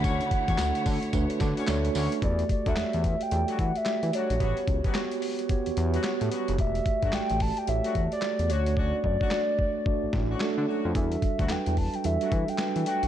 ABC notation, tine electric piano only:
X:1
M:4/4
L:1/8
Q:"Swing 16ths" 1/4=110
K:Edor
V:1 name="Tine electric piano"
[A,DFc]2 [A,DFA]2 [A,DFB]2 [A,DFc]2 | [A,FGd]2 [A,FGc]2 [A,FGd]2 [A,FGd]2 | [B,FGc]2 [B,FGc]2 [B,FGc]2 [B,FGc]2 | [A,FGd]2 [A,FGd]2 [A,FGc]2 [A,FGA] [A,DFc]- |
[A,DFc]2 [A,DFd]2 [A,DFd]2 [A,DFA]2 | [G,DFA]2 [F,G,DFB]2 [G,DFA]2 [G,DFB]2 |]